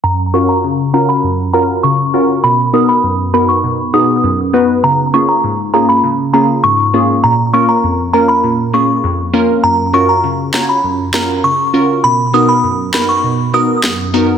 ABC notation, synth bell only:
X:1
M:4/4
L:1/16
Q:1/4=100
K:F#
V:1 name="Synth bell"
a z c' a z2 a b z2 a z c'3 z | b z d' b z2 b c' z2 d' z4 z | a z c' a z2 a b z2 a z c'3 z | a z c' a z2 a b z2 c' z4 z |
a z c' a z2 a b z2 a z c'3 z | b z d' b z2 b c' z2 d' z4 z |]